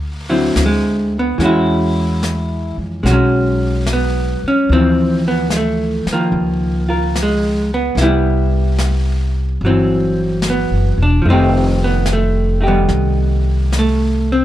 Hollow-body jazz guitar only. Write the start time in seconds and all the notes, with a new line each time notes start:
Already playing: C5 E5
0.30 D3 F#3 C4 E4
0.66 G#3
1.19 B3
1.38 E3 G#3 C#4
1.42 G#3 E4 F#4
3.03 G#3 C#4 F#4
3.11 F#3 G#3 C#4
3.93 B3
4.48 C#4
4.72 E3 F3 C4
5.28 B3
5.53 G#3 A3
6.13 D#3 F3 A#3
6.89 F4 A#4
7.23 G#3
7.74 B3
7.98 G3 E4
8.02 B3
9.65 E3 F#3 C4
10.50 B3
11.03 D4
11.22 F3 A3
11.29 D#3 A3 C4 D#4 G4
11.84 B3
12.13 A3
12.61 A3 D#4 G4
12.67 D#3 G3 B3
13.79 A3
14.32 C4